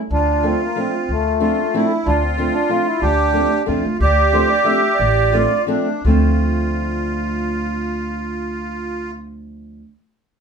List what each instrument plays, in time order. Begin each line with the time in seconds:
0.11 upright bass D2, accordion D4 F4
0.43 steel-string acoustic guitar F3 A3 C4 D4, accordion C4
0.64 accordion A#3
0.76 steel-string acoustic guitar F3 A3 C4 D4, accordion C4
1.09 upright bass D2, accordion A3
1.40 steel-string acoustic guitar F3 A3 C4 D4, accordion F4
1.74 steel-string acoustic guitar F3 A3 C4 D4, accordion E4
2.06 upright bass D2, accordion D4 F4
2.22 accordion C4
2.38 steel-string acoustic guitar F3 A3 C4 D4, accordion C4
2.53 accordion D4
2.69 steel-string acoustic guitar F3 A3 C4 D4, accordion F4
2.87 accordion E4
3.02 upright bass D2, accordion D4 G4
3.33 steel-string acoustic guitar F3 A3 C4 D4
3.66 upright bass E2, steel-string acoustic guitar F3 A3 C4 D4, accordion F4
3.85 upright bass D2
4.00 upright bass D2, accordion G4 D5
4.32 steel-string acoustic guitar F3 A3 C4 D4, accordion C5
4.50 accordion D5
4.64 steel-string acoustic guitar F3 A3 C4 D4, accordion E5
4.95 accordion D5
4.99 upright bass A1
5.32 steel-string acoustic guitar F3 A3 C4 D4, accordion F4
5.67 steel-string acoustic guitar F3 A3 C4 D4, accordion D4
6.04 upright bass D2, steel-string acoustic guitar F3 A3 C4 D4, accordion F4